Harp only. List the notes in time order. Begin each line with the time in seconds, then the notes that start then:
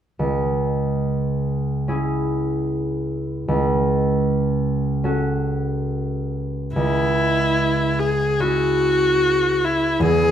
0.19 C#2
1.88 C#4 E4 G#4
3.48 C#2
5.04 C#4 F#4 A4
6.76 C#2
8.40 C#4 E4 G#4
9.99 E2 B3 G#4
10.05 E4